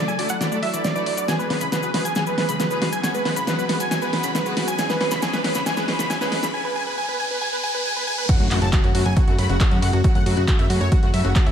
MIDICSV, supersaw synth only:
0, 0, Header, 1, 2, 480
1, 0, Start_track
1, 0, Key_signature, 3, "minor"
1, 0, Tempo, 437956
1, 1407, Time_signature, 4, 2, 24, 8
1, 12622, End_track
2, 0, Start_track
2, 0, Title_t, "Supersaw synth"
2, 0, Program_c, 0, 81
2, 86, Note_on_c, 0, 80, 87
2, 164, Note_off_c, 0, 80, 0
2, 206, Note_on_c, 0, 74, 64
2, 284, Note_off_c, 0, 74, 0
2, 326, Note_on_c, 0, 78, 97
2, 404, Note_off_c, 0, 78, 0
2, 446, Note_on_c, 0, 74, 61
2, 524, Note_off_c, 0, 74, 0
2, 568, Note_on_c, 0, 74, 64
2, 645, Note_off_c, 0, 74, 0
2, 686, Note_on_c, 0, 76, 96
2, 764, Note_off_c, 0, 76, 0
2, 805, Note_on_c, 0, 74, 63
2, 884, Note_off_c, 0, 74, 0
2, 925, Note_on_c, 0, 74, 65
2, 1004, Note_off_c, 0, 74, 0
2, 1046, Note_on_c, 0, 74, 97
2, 1124, Note_off_c, 0, 74, 0
2, 1166, Note_on_c, 0, 74, 66
2, 1244, Note_off_c, 0, 74, 0
2, 1285, Note_on_c, 0, 74, 63
2, 1364, Note_off_c, 0, 74, 0
2, 1405, Note_on_c, 0, 80, 90
2, 1483, Note_off_c, 0, 80, 0
2, 1525, Note_on_c, 0, 71, 60
2, 1604, Note_off_c, 0, 71, 0
2, 1645, Note_on_c, 0, 71, 60
2, 1724, Note_off_c, 0, 71, 0
2, 1765, Note_on_c, 0, 83, 82
2, 1844, Note_off_c, 0, 83, 0
2, 1887, Note_on_c, 0, 71, 57
2, 1964, Note_off_c, 0, 71, 0
2, 2007, Note_on_c, 0, 71, 63
2, 2085, Note_off_c, 0, 71, 0
2, 2127, Note_on_c, 0, 71, 56
2, 2205, Note_off_c, 0, 71, 0
2, 2248, Note_on_c, 0, 80, 87
2, 2325, Note_off_c, 0, 80, 0
2, 2367, Note_on_c, 0, 80, 94
2, 2445, Note_off_c, 0, 80, 0
2, 2488, Note_on_c, 0, 71, 61
2, 2565, Note_off_c, 0, 71, 0
2, 2608, Note_on_c, 0, 71, 64
2, 2685, Note_off_c, 0, 71, 0
2, 2727, Note_on_c, 0, 83, 85
2, 2805, Note_off_c, 0, 83, 0
2, 2847, Note_on_c, 0, 71, 64
2, 2925, Note_off_c, 0, 71, 0
2, 2967, Note_on_c, 0, 71, 66
2, 3045, Note_off_c, 0, 71, 0
2, 3087, Note_on_c, 0, 71, 65
2, 3165, Note_off_c, 0, 71, 0
2, 3206, Note_on_c, 0, 80, 87
2, 3284, Note_off_c, 0, 80, 0
2, 3327, Note_on_c, 0, 80, 92
2, 3405, Note_off_c, 0, 80, 0
2, 3446, Note_on_c, 0, 71, 61
2, 3524, Note_off_c, 0, 71, 0
2, 3567, Note_on_c, 0, 71, 60
2, 3645, Note_off_c, 0, 71, 0
2, 3687, Note_on_c, 0, 83, 94
2, 3765, Note_off_c, 0, 83, 0
2, 3807, Note_on_c, 0, 71, 59
2, 3885, Note_off_c, 0, 71, 0
2, 3928, Note_on_c, 0, 71, 65
2, 4005, Note_off_c, 0, 71, 0
2, 4045, Note_on_c, 0, 71, 59
2, 4124, Note_off_c, 0, 71, 0
2, 4166, Note_on_c, 0, 80, 93
2, 4244, Note_off_c, 0, 80, 0
2, 4286, Note_on_c, 0, 80, 96
2, 4364, Note_off_c, 0, 80, 0
2, 4406, Note_on_c, 0, 71, 61
2, 4484, Note_off_c, 0, 71, 0
2, 4527, Note_on_c, 0, 71, 62
2, 4605, Note_off_c, 0, 71, 0
2, 4647, Note_on_c, 0, 83, 97
2, 4725, Note_off_c, 0, 83, 0
2, 4766, Note_on_c, 0, 71, 67
2, 4844, Note_off_c, 0, 71, 0
2, 4885, Note_on_c, 0, 71, 63
2, 4964, Note_off_c, 0, 71, 0
2, 5006, Note_on_c, 0, 71, 64
2, 5084, Note_off_c, 0, 71, 0
2, 5126, Note_on_c, 0, 80, 94
2, 5204, Note_off_c, 0, 80, 0
2, 5247, Note_on_c, 0, 80, 98
2, 5324, Note_off_c, 0, 80, 0
2, 5366, Note_on_c, 0, 71, 62
2, 5444, Note_off_c, 0, 71, 0
2, 5486, Note_on_c, 0, 71, 65
2, 5564, Note_off_c, 0, 71, 0
2, 5605, Note_on_c, 0, 83, 96
2, 5684, Note_off_c, 0, 83, 0
2, 5725, Note_on_c, 0, 80, 97
2, 5804, Note_off_c, 0, 80, 0
2, 5846, Note_on_c, 0, 71, 65
2, 5924, Note_off_c, 0, 71, 0
2, 5965, Note_on_c, 0, 71, 62
2, 6044, Note_off_c, 0, 71, 0
2, 6085, Note_on_c, 0, 83, 99
2, 6164, Note_off_c, 0, 83, 0
2, 6205, Note_on_c, 0, 80, 96
2, 6284, Note_off_c, 0, 80, 0
2, 6325, Note_on_c, 0, 71, 62
2, 6403, Note_off_c, 0, 71, 0
2, 6446, Note_on_c, 0, 71, 68
2, 6524, Note_off_c, 0, 71, 0
2, 6566, Note_on_c, 0, 83, 98
2, 6644, Note_off_c, 0, 83, 0
2, 6686, Note_on_c, 0, 80, 105
2, 6764, Note_off_c, 0, 80, 0
2, 6805, Note_on_c, 0, 71, 68
2, 6884, Note_off_c, 0, 71, 0
2, 6925, Note_on_c, 0, 71, 66
2, 7003, Note_off_c, 0, 71, 0
2, 7046, Note_on_c, 0, 83, 95
2, 7124, Note_off_c, 0, 83, 0
2, 7165, Note_on_c, 0, 80, 101
2, 7244, Note_off_c, 0, 80, 0
2, 7285, Note_on_c, 0, 71, 65
2, 7364, Note_off_c, 0, 71, 0
2, 7406, Note_on_c, 0, 80, 104
2, 7484, Note_off_c, 0, 80, 0
2, 7526, Note_on_c, 0, 71, 67
2, 7604, Note_off_c, 0, 71, 0
2, 7646, Note_on_c, 0, 80, 97
2, 7724, Note_off_c, 0, 80, 0
2, 7766, Note_on_c, 0, 71, 69
2, 7844, Note_off_c, 0, 71, 0
2, 7887, Note_on_c, 0, 80, 102
2, 7965, Note_off_c, 0, 80, 0
2, 8007, Note_on_c, 0, 71, 68
2, 8085, Note_off_c, 0, 71, 0
2, 8126, Note_on_c, 0, 80, 98
2, 8204, Note_off_c, 0, 80, 0
2, 8247, Note_on_c, 0, 71, 71
2, 8325, Note_off_c, 0, 71, 0
2, 8367, Note_on_c, 0, 80, 112
2, 8445, Note_off_c, 0, 80, 0
2, 8488, Note_on_c, 0, 71, 70
2, 8565, Note_off_c, 0, 71, 0
2, 8607, Note_on_c, 0, 80, 111
2, 8685, Note_off_c, 0, 80, 0
2, 8729, Note_on_c, 0, 71, 69
2, 8806, Note_off_c, 0, 71, 0
2, 8847, Note_on_c, 0, 80, 106
2, 8925, Note_off_c, 0, 80, 0
2, 8966, Note_on_c, 0, 71, 67
2, 9044, Note_off_c, 0, 71, 0
2, 9086, Note_on_c, 0, 78, 100
2, 9164, Note_off_c, 0, 78, 0
2, 9207, Note_on_c, 0, 66, 67
2, 9285, Note_off_c, 0, 66, 0
2, 9326, Note_on_c, 0, 66, 68
2, 9404, Note_off_c, 0, 66, 0
2, 9446, Note_on_c, 0, 81, 92
2, 9524, Note_off_c, 0, 81, 0
2, 9565, Note_on_c, 0, 66, 65
2, 9644, Note_off_c, 0, 66, 0
2, 9684, Note_on_c, 0, 66, 66
2, 9763, Note_off_c, 0, 66, 0
2, 9805, Note_on_c, 0, 66, 67
2, 9884, Note_off_c, 0, 66, 0
2, 9925, Note_on_c, 0, 80, 97
2, 10004, Note_off_c, 0, 80, 0
2, 10045, Note_on_c, 0, 66, 63
2, 10124, Note_off_c, 0, 66, 0
2, 10166, Note_on_c, 0, 66, 65
2, 10244, Note_off_c, 0, 66, 0
2, 10286, Note_on_c, 0, 83, 95
2, 10364, Note_off_c, 0, 83, 0
2, 10408, Note_on_c, 0, 66, 63
2, 10485, Note_off_c, 0, 66, 0
2, 10527, Note_on_c, 0, 66, 67
2, 10604, Note_off_c, 0, 66, 0
2, 10648, Note_on_c, 0, 66, 68
2, 10725, Note_off_c, 0, 66, 0
2, 10768, Note_on_c, 0, 78, 100
2, 10845, Note_off_c, 0, 78, 0
2, 10887, Note_on_c, 0, 66, 67
2, 10965, Note_off_c, 0, 66, 0
2, 11007, Note_on_c, 0, 66, 65
2, 11085, Note_off_c, 0, 66, 0
2, 11126, Note_on_c, 0, 78, 99
2, 11204, Note_off_c, 0, 78, 0
2, 11247, Note_on_c, 0, 66, 66
2, 11325, Note_off_c, 0, 66, 0
2, 11366, Note_on_c, 0, 66, 64
2, 11444, Note_off_c, 0, 66, 0
2, 11486, Note_on_c, 0, 66, 64
2, 11564, Note_off_c, 0, 66, 0
2, 11606, Note_on_c, 0, 76, 93
2, 11684, Note_off_c, 0, 76, 0
2, 11724, Note_on_c, 0, 66, 63
2, 11803, Note_off_c, 0, 66, 0
2, 11843, Note_on_c, 0, 73, 99
2, 11923, Note_off_c, 0, 73, 0
2, 11965, Note_on_c, 0, 66, 62
2, 12044, Note_off_c, 0, 66, 0
2, 12086, Note_on_c, 0, 66, 68
2, 12164, Note_off_c, 0, 66, 0
2, 12205, Note_on_c, 0, 76, 97
2, 12284, Note_off_c, 0, 76, 0
2, 12324, Note_on_c, 0, 66, 66
2, 12403, Note_off_c, 0, 66, 0
2, 12445, Note_on_c, 0, 66, 67
2, 12524, Note_off_c, 0, 66, 0
2, 12564, Note_on_c, 0, 76, 99
2, 12622, Note_off_c, 0, 76, 0
2, 12622, End_track
0, 0, End_of_file